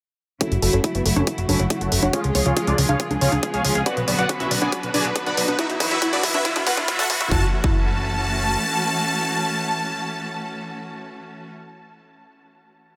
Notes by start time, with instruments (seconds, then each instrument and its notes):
0.41 string section C#3 F#3 A3 E4, supersaw synth C#4 F#4 A4 C#5, synth pluck E4, kick, closed hi-hat, riser
0.51 analog synth bass F#1, synth pluck F#4, supersaw synth F#4, closed hi-hat
0.62 analog synth bass F#1, string section C#3 F#3 A3 E4, supersaw synth F#4, synth pluck A4, open hi-hat
0.73 analog synth bass F#1, supersaw synth C#4 F#4 A4 C#5, synth pluck C#5, closed hi-hat
0.84 string section C#3 F#3 A3 E4, synth pluck E4, supersaw synth F#4, kick, closed hi-hat
0.94 analog synth bass F#1, supersaw synth B3 E4 F#4 B4, synth pluck F#4, closed hi-hat
1.05 analog synth bass F#1, string section C#3 F#3 A3 E4, supersaw synth F#4, synth pluck A4, open hi-hat
1.16 analog synth bass F#1, supersaw synth C#4 F#4 A4 C#5, synth pluck C#5, closed hi-hat, high conga
1.27 string section C#3 F#3 A3 E4, synth pluck E4, supersaw synth F#4, kick, closed hi-hat
1.38 analog synth bass F#1, supersaw synth F#4, synth pluck F#4, closed hi-hat
1.49 analog synth bass F#1, string section C#3 F#3 A3 E4, supersaw synth C#4 F#4 A4 C#5, synth pluck A4, open hi-hat, high conga
1.59 analog synth bass F#1, supersaw synth F#4, synth pluck C#5, closed hi-hat
1.70 string section C#3 F#3 A3 E4, synth pluck E4, supersaw synth F#4, kick, closed hi-hat
1.81 analog synth bass F#1, synth pluck F#4, supersaw synth F#4 A4 C#5 F#5, closed hi-hat
1.92 analog synth bass F#1, string section C#3 F#3 A3 E4, supersaw synth F#4, synth pluck A4, open hi-hat
2.03 analog synth bass F#1, supersaw synth F#4, synth pluck C#5, closed hi-hat, high conga
2.13 string section C#3 F3 G#3 F4, synth pluck F4, supersaw synth F4 G#4 C#5 F5, kick, closed hi-hat
2.24 analog synth bass C#2, synth pluck G#4, supersaw synth G#4, closed hi-hat
2.35 analog synth bass C#2, string section C#3 F3 G#3 F4, supersaw synth G#4, synth pluck C#5, kick, open hi-hat
2.46 analog synth bass C#2, supersaw synth F4 G#4 C#5 F5, synth pluck F5, closed hi-hat
2.56 string section C#3 F3 G#3 F4, synth pluck F4, supersaw synth G#4, kick, closed hi-hat
2.67 analog synth bass C#2, supersaw synth D4 F4 G#4 D5, synth pluck G#4, closed hi-hat
2.78 analog synth bass C#2, string section C#3 F3 G#3 F4, supersaw synth G#4, synth pluck C#5, open hi-hat
2.89 analog synth bass C#2, supersaw synth F4 G#4 C#5 F5, synth pluck F5, closed hi-hat, high conga
3.00 string section C#3 F3 G#3 F4, synth pluck F4, supersaw synth G#4, kick, closed hi-hat
3.10 analog synth bass C#2, synth pluck G#4, supersaw synth G#4, closed hi-hat, high conga
3.21 analog synth bass C#2, string section C#3 F3 G#3 F4, supersaw synth F4 G#4 C#5 F5, synth pluck C#5, open hi-hat
3.32 analog synth bass C#2, supersaw synth G#4, synth pluck F5, closed hi-hat, high conga
3.43 string section C#3 F3 G#3 F4, synth pluck F4, supersaw synth G#4, kick, closed hi-hat
3.54 analog synth bass C#2, synth pluck G#4, supersaw synth G#4 C#5 F5 G#5, closed hi-hat
3.64 analog synth bass C#2, string section C#3 F3 G#3 F4, supersaw synth G#4, synth pluck C#5, open hi-hat
3.75 analog synth bass C#2, supersaw synth G#4, synth pluck F5, closed hi-hat
3.86 string section D3 F#3 B3 F#4, supersaw synth F#4 B4 D5 F#5, synth pluck F#4, kick, closed hi-hat
3.97 analog synth bass B1, synth pluck B4, supersaw synth B4, closed hi-hat
4.07 analog synth bass B1, string section D3 F#3 B3 F#4, supersaw synth B4, synth pluck D5, open hi-hat
4.18 analog synth bass B1, supersaw synth F#4 B4 D5 F#5, synth pluck F#5, closed hi-hat
4.29 string section D3 F#3 B3 F#4, synth pluck F#4, supersaw synth B4, kick, closed hi-hat
4.40 analog synth bass B1, supersaw synth E4 F#4 B4 E5, synth pluck B4, closed hi-hat
4.51 analog synth bass B1, string section D3 F#3 B3 F#4, supersaw synth B4, synth pluck D5, open hi-hat
4.61 analog synth bass B1, supersaw synth G#4 B4 D5 G#5, synth pluck F#5, high conga
4.72 string section D3 F#3 B3 F#4, synth pluck F#4, supersaw synth B4, kick, closed hi-hat
4.83 analog synth bass B1, supersaw synth B4, synth pluck B4, closed hi-hat
4.94 analog synth bass B1, string section D3 F#3 B3 F#4, supersaw synth G#4 B4 D5 G#5, synth pluck D5, open hi-hat, high conga
5.05 analog synth bass B1, supersaw synth B4, synth pluck F#5, closed hi-hat
5.15 string section D3 F#3 B3 F#4, synth pluck F#4, supersaw synth B4, kick, closed hi-hat
5.26 analog synth bass B1, supersaw synth B4 D5 F#5 B5, synth pluck B4, closed hi-hat
5.37 analog synth bass B1, string section D3 F#3 B3 F#4, supersaw synth B4, synth pluck D5, open hi-hat
5.48 analog synth bass B1, supersaw synth B4, synth pluck F#5, closed hi-hat, high conga
5.58 string section E3 F#3 B3 F#4, supersaw synth E4 F#4 B4 E5, synth pluck E4, kick, closed hi-hat
5.69 analog synth bass E1, supersaw synth E4, synth pluck F#4, closed hi-hat
5.80 analog synth bass E1, string section E3 F#3 B3 F#4, supersaw synth E4, synth pluck B4, kick, open hi-hat
5.91 analog synth bass E1, supersaw synth E4 F#4 B4 E5, synth pluck E5, closed hi-hat
6.02 string section E3 F#3 B3 F#4, synth pluck E4, supersaw synth E4, kick, closed hi-hat
6.13 analog synth bass E1, supersaw synth D4 F#4 B4 D5, synth pluck F#4, closed hi-hat
6.23 analog synth bass E1, string section E3 F#3 B3 F#4, supersaw synth E4, synth pluck B4, kick, open hi-hat
6.34 analog synth bass E1, supersaw synth E4 F#4 B4 E5, synth pluck E5, closed hi-hat, high conga
6.45 string section E3 F#3 B3 F#4, supersaw synth E4, synth pluck E4, kick, closed hi-hat
6.56 analog synth bass E1, supersaw synth E4, synth pluck F#4, kick, closed hi-hat, high conga
6.67 analog synth bass E1, string section E3 F#3 B3 F#4, supersaw synth F#4 B4 F#5, synth pluck B4, kick, open hi-hat
6.77 analog synth bass E1, supersaw synth E4, synth pluck E5, kick, closed hi-hat, high conga
6.88 string section E3 F#3 B3 F#4, synth pluck E4, supersaw synth E4, kick, closed hi-hat
6.99 analog synth bass F#1, synth pluck F#4, supersaw synth A4 E5 F#5 A5, kick, closed hi-hat
7.10 analog synth bass D1, string section E3 F#3 B3 F#4, supersaw synth E4, synth pluck B4, kick, open hi-hat
7.21 analog synth bass E1, supersaw synth E4, synth pluck E5, kick, closed hi-hat
7.31 analog synth bass F#1, string section E3 A3 C#4 F#4, synth pluck E4, supersaw synth A5, kick
7.64 analog synth bass F#1, synth pluck E4, supersaw synth A5, kick